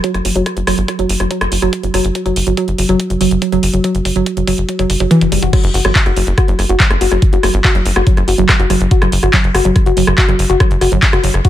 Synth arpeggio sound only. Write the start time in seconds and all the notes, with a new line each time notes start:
0.04 F#3
0.25 F#3
0.36 F#3
0.57 F#3
0.67 F#3
0.88 F#3
0.99 F#3
1.20 F#3
1.31 F#3
1.52 F#3
1.62 F#3
1.83 F#3
1.94 F#3
2.15 F#3
2.26 F#3
2.47 F#3
2.57 F#3
2.78 F#3
2.89 F#3
3.10 F#3
3.21 F#3
3.42 F#3
3.52 F#3
3.74 F#3
3.84 F#3
4.05 F#3
4.16 F#3
4.37 F#3
4.47 F#3
4.69 F#3
4.79 F#3
5.00 F#3
5.11 E3
5.32 G3
5.43 F#4
5.53 F#3
5.74 F#4
5.85 F#3
6.06 F#4
6.17 F#3
6.38 F#4
6.48 F#3
6.69 F#4
6.80 F#3
7.01 F#4
7.12 F#3
7.33 F#4
7.43 F#3
7.64 F#4
7.75 F#3
7.96 F#4
8.07 F#3
8.28 F#4
8.38 F#3
8.59 F#4
8.70 F#3
8.91 F#4
9.02 F#3
9.23 F#4
9.33 F#3
9.55 F#4
9.65 F#3
9.86 F#4
9.97 F#3
10.18 F#4
10.28 F#3
10.50 F#4
10.60 F#3
10.81 F#4
10.92 F#3
11.13 F#4
11.24 F#3
11.45 F#4